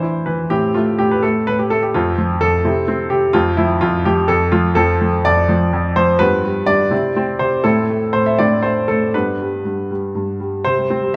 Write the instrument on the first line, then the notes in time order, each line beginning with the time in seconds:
grand piano
Already playing: E3 D4 E4 C5
0.03 E4
0.26 E3 B4
0.50 A2 C4 E4 G4
0.74 A3 F4
0.98 A2 G4
1.11 B4
1.23 A3 A4
1.47 A2 B4
1.59 G4
1.70 A3 A4
1.83 G4
1.94 F2 C4 F4
2.18 F3
2.41 F2 A4
2.65 C3 C4 E4
2.88 C4
3.10 C3 G4
3.33 F2 C4 F4
3.57 F3 E4
3.81 F2 F4
4.05 F3 G4
4.28 F2 A4
4.52 F3 F4
4.75 F2 C4 F4 A4
5.01 F3
5.25 F2 D5
5.49 F3
5.73 F2
5.96 F3 C5
6.19 G2 B3 F4 B4
6.44 G3
6.66 G2 D5
6.91 C3 C4 E4
7.16 C4
7.39 C3 C5
7.64 A2 C4 E4 A4
7.90 A3
8.13 A2 C5
8.26 E5
8.38 A2 C4 D4 D5
8.62 A3 C5
8.88 A2 A4
9.14 G2 B3 D4 B4
9.41 G3
9.65 G2
9.91 G3
10.15 G2
10.40 G3
10.65 C3 C5
10.78 G3
10.90 C4
11.03 G3